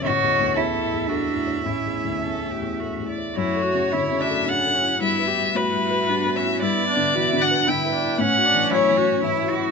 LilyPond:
<<
  \new Staff \with { instrumentName = "Violin" } { \time 3/4 \key fis \phrygian \tempo 4 = 112 cis''4 a'4 fis'4 | e'4 a'8 g'8 fis'8 d''8 | cis''4. e''8 fis''4 | e''4 b'4. e''8 |
d''4. fis''8 g''4 | fis''4 cis''4. r8 | }
  \new Staff \with { instrumentName = "Viola" } { \time 3/4 \key fis \phrygian e''2.~ | e''2~ e''8 r8 | e'8 fis'8 e'8 d'8 cis'4 | e'8 g'8 fis'2 |
e'8 d'8 fis'4 e'8 d'8 | cis'8 d'8 e'8 fis'8 e'4 | }
  \new Staff \with { instrumentName = "Ambient pad" } { \time 3/4 \key fis \phrygian << { e''2.~ | e''2. | e''2.~ | e''2.~ |
e''2.~ | e''2. | } \\ { <a e'>2.~ | <a e'>2. | <a fis'>2. | <b b'>2.~ |
<b b'>2. | <fis cis'>2. | } >> }
  \new Staff \with { instrumentName = "Cello" } { \time 3/4 \key fis \phrygian fis'4 e'4 d'4 | cis'2~ cis'8 r8 | fis'4 e'4 d'8 cis'8 | b4 e'4 d'8 cis'8 |
b4 e'8 d'8 e'4 | cis'2 e'8 fis'8 | }
  \new Staff \with { instrumentName = "Felt piano" } { \clef bass \time 3/4 \key fis \phrygian \tuplet 3/2 { a,,8 e,8 d,8 e,8 e'8 e,8 a'8 e,8 cis''8 } | \tuplet 3/2 { a,,8 e,8 d,8 e,8 e'8 e,8 a'8 e,8 cis''8 } | \tuplet 3/2 { fis,8 a'8 cis8 d8 cis8 a'8 cis8 a'8 e'8 } | \tuplet 3/2 { g,8 b'8 g8 a8 g8 b'8 g8 b'8 e'8 } |
\tuplet 3/2 { g,8 b'8 d8 e8 d8 b'8 d8 b'8 e'8 } | \tuplet 3/2 { a,8 fis'8 e8 fis8 e8 fis'8 e8 fis'8 e'8 } | }
>>